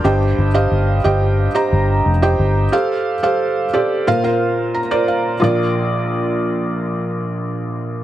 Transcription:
<<
  \new Staff \with { instrumentName = "Felt piano" } { \time 4/4 \key bes \major \tempo 4 = 89 << { <a'' d'''>16 r2. r8. | r2. bes''8 f''8 | r1 | } \\ { <g' c'' ees'' g''>8 r16 <g' c'' ees'' f''>8 r16 <g' c'' ees'' g''>8 r16 <g' c'' ees'' bes''>8. r16 <g' c'' ees'' g''>8 r16 | <g' a' c'' f''>8 r16 <g' a' c'' f''>8 r16 <g' a' c'' d''>8 <f' bes' c'' f''>16 <f' bes' c'' f''>8. r16 <f' bes' c'' d''>8 r16 | <f' bes' d''>1 | } >> }
  \new Staff \with { instrumentName = "Felt piano" } { \clef bass \time 4/4 \key bes \major g,4. r2 r8 | r2 bes,4. r8 | bes,,1 | }
  \new Staff \with { instrumentName = "Fingered electric bass" } { \clef bass \time 4/4 \key bes \major g,,8 g,,8 g,,8 g,,8. r16 g,,8 f,,8 g,,8 | r1 | r1 | }
>>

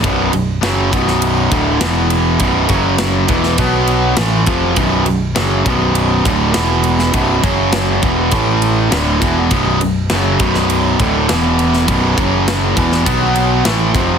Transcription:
<<
  \new Staff \with { instrumentName = "Distorted electric guitar" } { \clef bass \time 4/4 \key e \major \tempo 4 = 101 <b,, fis, b,>8 <b,, fis,>8 <fis, cis fis>8 <b,, fis, b,>4 <d, a, d>8 <e, b, e>4 | <b,, fis, b,>8 <fis, cis fis>4 <e, b, e>8 <b, fis b>4 <a, e a>8 <eis, c eis>8 | <b,, fis, b,>8 <b,, fis,>8 <fis, cis fis>8 <b,, fis, b,>4 <d, a, d>8 <e, b, e>4 | <b,, fis, b,>8 <fis, cis fis>4 <e, b, e>8 <a, e a>4 <d, a, d>8 <e, b, e>8 |
<b,, fis, b,>8 <b,, fis,>8 <fis, cis fis>8 <b,, fis, b,>4 <d, a, d>8 <e, b, e>4 | <b,, fis, b,>8 <fis, cis fis>4 <e, b, e>8 <b, fis b>4 <a, e a>8 <eis, c eis>8 | }
  \new Staff \with { instrumentName = "Distorted electric guitar" } { \clef bass \time 4/4 \key e \major <b,, fis, b,>8 <b,, fis,>8 <fis, cis fis>8 <b,, fis, b,>4 <d, a, d>8 <e, b, e>4 | <b,, fis, b,>8 <fis, cis fis>4 <e, b, e>8 <b, fis b>4 <a, e a>8 <eis, c eis>8 | <b,, fis, b,>8 <b,, fis,>8 <fis, cis fis>8 <b,, fis, b,>4 <d, a, d>8 <e, b, e>4 | <b,, fis, b,>8 <fis, cis fis>4 <e, b, e>8 <a, e a>4 <d, a, d>8 <e, b, e>8 |
<b,, fis, b,>8 <b,, fis,>8 <fis, cis fis>8 <b,, fis, b,>4 <d, a, d>8 <e, b, e>4 | <b,, fis, b,>8 <fis, cis fis>4 <e, b, e>8 <b, fis b>4 <a, e a>8 <eis, c eis>8 | }
  \new Staff \with { instrumentName = "Picked electric bass" } { \clef bass \time 4/4 \key e \major b,,,8 b,,,8 fis,,8 b,,,4 d,,8 e,,4 | b,,,8 fis,,4 e,,8 b,,4 a,,8 eis,,8 | b,,,8 b,,,8 fis,,8 b,,,4 d,,8 e,,4 | b,,,8 fis,,4 e,,8 a,,4 d,,8 e,,8 |
b,,,8 b,,,8 fis,,8 b,,,4 d,,8 e,,4 | b,,,8 fis,,4 e,,8 b,,4 a,,8 eis,,8 | }
  \new DrumStaff \with { instrumentName = "Drums" } \drummode { \time 4/4 <bd cymr>8 cymr8 <cymr sn>8 <bd cymr>16 sn16 cymr8 <bd cymr>8 <cymr sn>8 cymr8 | <bd cymr>8 <bd cymr>8 <cymr sn>8 <bd cymr>16 sn16 <bd cymr>8 cymr8 <cymr sn>8 <bd cymr>8 | <bd cymr>8 cymr8 <cymr sn>8 <bd cymr>8 cymr8 <bd cymr>8 <cymr sn>8 cymr16 sn16 | <bd cymr>8 <bd cymr>8 <cymr sn>8 <bd cymr>8 <bd cymr>8 cymr8 <cymr sn>8 <bd cymr>8 |
<bd cymr>8 cymr8 <cymr sn>8 <bd cymr>16 sn16 cymr8 <bd cymr>8 <cymr sn>8 cymr16 sn16 | <bd cymr>8 <bd cymr>8 <cymr sn>8 <bd cymr>16 sn16 <bd cymr>8 cymr8 <cymr sn>8 <bd cymr>8 | }
>>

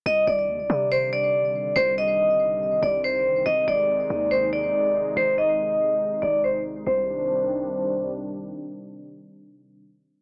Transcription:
<<
  \new Staff \with { instrumentName = "Vibraphone" } { \time 4/4 \key c \minor \tempo 4 = 141 ees''8 d''4. c''8 d''4. | c''8 ees''2 d''8 c''4 | ees''8 d''4. c''8 d''4. | c''8 ees''2 d''8 c''8 r8 |
c''2. r4 | r1 | }
  \new Staff \with { instrumentName = "Analog synth pad" } { \clef bass \time 4/4 \key c \minor << { <d g>1~ | <d g>1 | <aes ees'>1~ | <aes ees'>1 |
<c ees g d'>1~ | <c ees g d'>1 | } \\ { <c ees>1~ | <c ees>1~ | <c ees>1~ | <c ees>1 |
r1 | r1 | } >> }
  \new Staff \with { instrumentName = "808-style bass" } { \clef bass \time 4/4 \key c \minor c,8 c,8 ees,16 c,16 c2~ c8 | c,2~ c,8 c,4. | aes,,8 aes,,8 r8 ees,4. r4 | aes,,4. r4 aes,,4. |
c,1 | r1 | }
>>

